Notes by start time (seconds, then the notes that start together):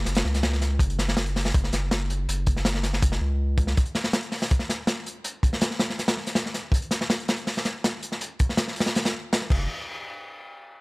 0.05 F#1, snare, closed hi-hat
0.15 snare, closed hi-hat
0.25 C#2, snare
0.34 snare, closed hi-hat
0.43 snare, closed hi-hat
0.53 snare
0.61 snare, closed hi-hat
0.79 F#1, kick, closed hi-hat
0.90 closed hi-hat
0.99 snare, closed hi-hat
1.08 snare
1.17 snare, closed hi-hat
1.26 closed hi-hat
1.36 snare, open hi-hat
1.45 snare
1.54 F#1, kick, closed hi-hat
1.64 snare
1.73 F#1, snare, closed hi-hat
1.91 snare, closed hi-hat
2.10 closed hi-hat
2.28 F#1, closed hi-hat
2.46 kick, closed hi-hat
2.57 snare
2.65 snare, closed hi-hat
2.75 snare
2.83 snare, closed hi-hat
2.93 snare
3.02 F#1, kick, closed hi-hat
3.12 snare
3.21 C#2
3.58 kick, closed hi-hat
3.67 snare
3.77 kick, closed hi-hat
3.86 closed hi-hat
3.95 snare, closed hi-hat
4.04 snare
4.13 snare, closed hi-hat
4.23 closed hi-hat
4.32 snare, open hi-hat
4.42 snare
4.51 kick, closed hi-hat
4.59 snare
4.69 snare, closed hi-hat
4.87 snare, closed hi-hat
5.06 closed hi-hat
5.24 closed hi-hat
5.43 kick, closed hi-hat
5.53 snare
5.61 snare, closed hi-hat
5.71 snare
5.79 snare, closed hi-hat
5.90 snare
5.99 snare, closed hi-hat
6.08 snare, closed hi-hat
6.17 snare
6.27 snare, closed hi-hat
6.35 snare, closed hi-hat
6.46 snare
6.54 snare, closed hi-hat
6.72 kick, closed hi-hat
6.82 closed hi-hat
6.91 snare, closed hi-hat
7.01 snare
7.10 snare, closed hi-hat
7.20 closed hi-hat
7.28 snare, closed hi-hat
7.38 closed hi-hat
7.47 snare, open hi-hat
7.57 snare
7.65 snare, closed hi-hat
7.84 snare, closed hi-hat
8.03 closed hi-hat
8.12 snare
8.21 closed hi-hat
8.39 kick, closed hi-hat
8.49 snare
8.57 snare, closed hi-hat
8.68 snare
8.76 closed hi-hat
8.80 snare, closed hi-hat
8.86 snare, closed hi-hat
8.95 snare, closed hi-hat
9.05 snare, closed hi-hat
9.33 snare, closed hi-hat
9.42 snare
9.50 F#1, kick, crash